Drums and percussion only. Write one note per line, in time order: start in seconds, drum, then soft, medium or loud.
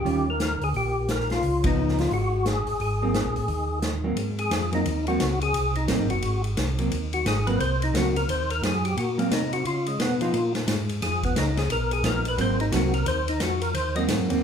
0.06 open hi-hat soft
0.40 snare medium
0.40 closed hi-hat soft
0.61 open hi-hat soft
0.74 open hi-hat soft
1.09 snare medium
1.09 closed hi-hat medium
1.20 snare soft
1.30 snare soft
1.30 open hi-hat soft
1.43 open hi-hat soft
1.64 kick medium
1.64 ride medium
1.88 snare soft
1.98 snare soft
1.98 open hi-hat soft
2.11 open hi-hat soft
2.46 snare medium
2.46 closed hi-hat soft
2.67 open hi-hat soft
2.80 open hi-hat soft
3.14 snare medium
3.14 closed hi-hat soft
3.36 open hi-hat soft
3.48 open hi-hat soft
3.82 snare medium
3.82 closed hi-hat soft
4.17 ride medium
4.39 ride soft
4.51 snare medium
4.51 hi-hat pedal medium
4.51 ride medium
4.73 ride soft
4.86 ride medium
5.07 ride soft
5.20 snare medium
5.20 hi-hat pedal medium
5.20 ride medium
5.41 ride soft
5.54 ride medium
5.75 ride soft
5.88 snare medium
5.88 hi-hat pedal soft
5.88 ride medium
6.10 ride soft
6.22 ride soft
6.44 ride soft
6.57 snare medium
6.57 hi-hat pedal medium
6.57 ride medium
6.79 ride soft
6.92 ride soft
7.13 ride soft
7.26 snare medium
7.26 hi-hat pedal soft
7.26 ride medium
7.47 ride soft
7.60 ride soft
7.82 ride soft
7.95 snare medium
7.95 hi-hat pedal medium
7.95 ride medium
8.16 ride soft
8.29 ride medium
8.50 ride soft
8.63 snare medium
8.63 hi-hat pedal medium
8.63 ride medium
8.85 ride soft
8.97 ride medium
9.19 ride soft
9.31 snare medium
9.31 hi-hat pedal soft
9.31 ride medium
9.53 ride soft
9.65 ride medium
9.86 ride soft
10.00 snare medium
10.00 hi-hat pedal medium
10.00 ride medium
10.21 ride soft
10.34 ride medium
10.55 snare soft
10.55 ride soft
10.68 snare medium
10.68 hi-hat pedal medium
10.68 ride medium
10.89 ride soft
11.02 snare soft
11.02 ride medium
11.23 kick medium
11.23 ride soft
11.36 snare medium
11.36 hi-hat pedal soft
11.36 ride medium
11.57 snare soft
11.57 ride soft
11.70 ride medium
11.91 ride soft
12.04 snare medium
12.04 hi-hat pedal medium
12.04 ride medium
12.25 ride soft
12.38 ride medium
12.60 ride soft
12.72 snare medium
12.72 hi-hat pedal medium
12.72 ride medium
12.94 ride soft
13.06 ride medium
13.28 ride soft
13.40 snare medium
13.40 hi-hat pedal medium
13.40 ride medium
13.62 ride soft
13.75 ride medium
13.96 ride soft
14.08 snare medium
14.08 hi-hat pedal medium
14.08 ride medium
14.30 ride soft